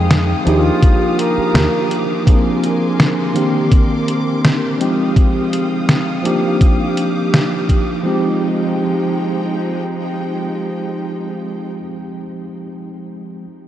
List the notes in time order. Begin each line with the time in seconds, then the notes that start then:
Already playing: F2 F3 G#3 C4 D#4 G#4 F5 G5 D#6
0.11 snare, closed hi-hat
0.45 D#2 F3 A#3 D4 D#4 F4 G4 F5 D6, closed hi-hat
0.82 kick, closed hi-hat
1.19 A#4, closed hi-hat
1.38 muted fingered electric bass stroke
1.54 D#2, snare, closed hi-hat
1.91 closed hi-hat
2.25 F3 A#3 C4 D4 G#4 A#4 G#5 C6, kick, closed hi-hat
2.63 closed hi-hat
3.00 snare, closed hi-hat
3.34 D#3 A#3 C4 D4 G4 D6, closed hi-hat
3.72 kick, closed hi-hat
4.08 closed hi-hat
4.45 snare, closed hi-hat
4.78 F3 G#3 C4 D#4 G4 F5 G5 D#6, closed hi-hat
5.16 kick, closed hi-hat
5.53 closed hi-hat
5.89 snare, closed hi-hat
6.23 F3 A#3 D4 D#4 G4 D6, closed hi-hat
6.61 kick, closed hi-hat
6.97 closed hi-hat
7.34 snare, closed hi-hat
7.69 kick, closed hi-hat
8.03 F3 G#3 C4 D#4 G5
8.08 G4